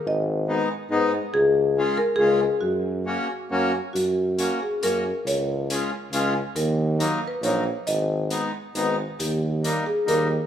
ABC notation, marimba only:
X:1
M:3/4
L:1/8
Q:"Swing" 1/4=138
K:F#
V:1 name="Marimba"
d3 z3 | G3 A G2 | F4 z2 | F3 G A2 |
c3 z3 | A3 B c2 | d3 z3 | =G3 ^G A2 |]